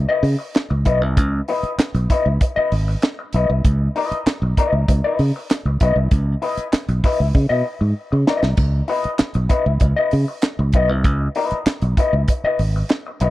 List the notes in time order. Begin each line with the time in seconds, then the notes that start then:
0.09 E4 B4 D#5
0.23 C#3, muted clean electric guitar stroke, open hi-hat
0.39 muted clean electric guitar stroke
0.55 snare, clap, closed hi-hat
0.70 C#2, muted clean electric guitar stroke
0.85 B1 E4 B4 D#5, kick, closed hi-hat
1.01 C2, muted clean electric guitar stroke
1.17 C#2, kick, closed hi-hat
1.48 E4 B4 D#5, open hi-hat
1.63 muted fingered electric bass stroke, closed hi-hat
1.78 muted fingered electric bass stroke, snare, clap, closed hi-hat
1.94 B1, muted clean electric guitar stroke, closed hi-hat
2.10 E4 B4 D#5, kick, closed hi-hat
2.26 C#2, muted clean electric guitar stroke
2.41 muted clean electric guitar stroke, kick, closed hi-hat
2.56 E4 B4 D#5, muted fingered electric bass stroke
2.72 G#1, muted clean electric guitar stroke, open hi-hat
2.88 muted clean electric guitar stroke
3.02 snare, clap, closed hi-hat
3.19 muted clean electric guitar stroke
3.33 B1 E4 B4 D#5, closed hi-hat
3.50 C2, muted clean electric guitar stroke
3.65 C#2, kick, closed hi-hat
3.96 E4 B4 D#5, open hi-hat
4.11 muted fingered electric bass stroke, closed hi-hat
4.26 muted fingered electric bass stroke, snare, clap, closed hi-hat
4.42 B1, muted clean electric guitar stroke
4.57 E4 B4 D#5, kick, closed hi-hat
4.72 C#2, muted clean electric guitar stroke
4.88 C#2, muted clean electric guitar stroke, kick, closed hi-hat
5.04 E4 B4 D#5
5.19 C#3, muted clean electric guitar stroke, open hi-hat
5.36 muted clean electric guitar stroke
5.50 snare, clap, closed hi-hat
5.65 C#2, muted clean electric guitar stroke
5.80 B1 E4 B4 D#5, kick, closed hi-hat
5.96 C2, muted clean electric guitar stroke
6.11 C#2, kick, closed hi-hat
6.42 E4 B4 D#5, open hi-hat
6.57 muted fingered electric bass stroke, closed hi-hat
6.73 muted fingered electric bass stroke, snare, clap, closed hi-hat
6.88 B1, muted clean electric guitar stroke, closed hi-hat
7.04 E4 B4 D#5, kick, open hi-hat
7.19 C#2, muted clean electric guitar stroke
7.34 C#3, muted clean electric guitar stroke, kick
7.49 B2 E4 B4 D#5
7.65 muted clean electric guitar stroke
7.81 G#2, muted clean electric guitar stroke
8.12 C#3, muted clean electric guitar stroke
8.27 E4 B4 D#5, snare
8.42 C2, muted clean electric guitar stroke, snare
8.57 C#2, kick, splash
8.88 E4 B4 D#5, open hi-hat
9.04 muted fingered electric bass stroke, closed hi-hat
9.18 muted fingered electric bass stroke, snare, clap, closed hi-hat
9.34 B1, muted clean electric guitar stroke, closed hi-hat
9.49 E4 B4 D#5, kick, closed hi-hat
9.65 C#2, muted clean electric guitar stroke
9.80 C#2, muted clean electric guitar stroke, kick, closed hi-hat
9.96 E4 B4 D#5
10.11 C#3, muted clean electric guitar stroke, open hi-hat
10.28 muted clean electric guitar stroke
10.42 snare, clap, closed hi-hat
10.59 C#2, muted clean electric guitar stroke
10.72 B1 E4 B4 D#5, kick, closed hi-hat
10.89 C2, muted clean electric guitar stroke
11.04 C#2, kick, closed hi-hat
11.35 E4 B4 D#5, open hi-hat
11.51 muted fingered electric bass stroke, closed hi-hat
11.66 muted fingered electric bass stroke, snare, clap, closed hi-hat
11.82 B1, muted clean electric guitar stroke, closed hi-hat
11.97 E4 B4 D#5, kick, closed hi-hat
12.13 C#2, muted clean electric guitar stroke
12.28 muted clean electric guitar stroke, kick, closed hi-hat
12.44 E4 B4 D#5, muted fingered electric bass stroke
12.59 G#1, muted clean electric guitar stroke, open hi-hat
12.76 muted clean electric guitar stroke
12.89 snare, clap, closed hi-hat
13.07 muted clean electric guitar stroke
13.20 B1 E4 B4 D#5, closed hi-hat